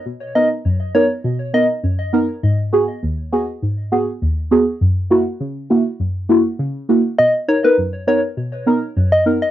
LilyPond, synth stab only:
\new Staff \with { instrumentName = "Synth stab" } { \time 4/4 \key b \major \tempo 4 = 101 << { r8 <b dis' ais'>16 r8. <b dis' ais'>16 r8. <b dis' ais'>16 r8. <b dis' ais'>16 r16 | r8 <b fis' gis'>16 r8. <b fis' gis'>16 r8. <b fis' gis'>16 r8. <b fis' gis'>16 r16 | r8 <ais e' fis'>16 r8. <ais e' fis'>16 r8. <ais e' fis'>16 r8. <ais e' fis'>16 r16 | r8 <dis' ais'>16 <b dis' ais'>16 r8 <b dis' ais'>16 r8. <b dis' ais'>16 r8. <b dis' ais'>16 r16 | } \\ { b,4 fis,4 b,4 fis,4 | gis,4 dis,4 gis,4 dis,4 | fis,4 cis4 fis,4 cis4 | b,4 fis,4 b,4 fis,4 | } >> }